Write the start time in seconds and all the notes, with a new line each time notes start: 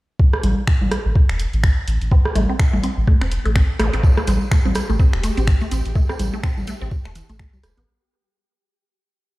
0.19 kick
0.33 cross-stick
0.43 A1, closed hi-hat, high conga
0.67 finger snap, kick
0.81 A1, high conga
0.91 cross-stick, closed hi-hat
1.05 A1
1.15 kick
1.29 E1, finger snap
1.40 closed hi-hat
1.53 A1, closed hi-hat
1.63 finger snap, kick
1.87 A1, closed hi-hat
2.01 A1, closed hi-hat
2.11 C4, kick
2.25 cross-stick
2.35 A1 A3, closed hi-hat, high conga
2.49 C4
2.59 finger snap, kick
2.73 A1 A3, high conga
2.83 C4, closed hi-hat
2.97 A1
3.07 A3, kick
3.21 E1 C4, finger snap
3.32 closed hi-hat
3.45 A1 A3, closed hi-hat
3.55 C4, finger snap, kick
3.79 A1 A3, cross-stick, closed hi-hat, zap
3.93 A1 C4, closed hi-hat
4.03 G4, kick, tambourine
4.17 A3, cross-stick, tambourine
4.27 A1 C4, closed hi-hat, tambourine, high conga
4.41 tambourine
4.51 A3, finger snap, kick, tambourine
4.65 A1 C4, high conga
4.75 cross-stick, closed hi-hat, tambourine
4.89 A1 A3, tambourine
4.99 C4, kick, tambourine
5.13 E1, finger snap
5.23 A3, closed hi-hat, tambourine
5.37 A1 C4, closed hi-hat, tambourine
5.47 finger snap, kick, tambourine
5.61 A3, tambourine
5.71 A1 C4, closed hi-hat, tambourine
5.85 A1, closed hi-hat, tambourine
5.95 A3, kick, tambourine
6.09 C4, cross-stick, tambourine
6.19 A1, closed hi-hat, tambourine, high conga
6.33 A3, tambourine
6.43 C4, finger snap, kick, tambourine
6.57 A1, tambourine, high conga
6.67 A3, closed hi-hat, tambourine
6.81 A1 C4, tambourine
6.91 kick, tambourine
7.05 E1 A3, finger snap, tambourine
7.15 E3, closed hi-hat, tambourine
7.29 A1 A3, closed hi-hat, tambourine
7.39 A3, finger snap, kick
7.53 C2 G3, tambourine
7.63 E1, cross-stick, closed hi-hat, tambourine
7.77 A1 B3, closed hi-hat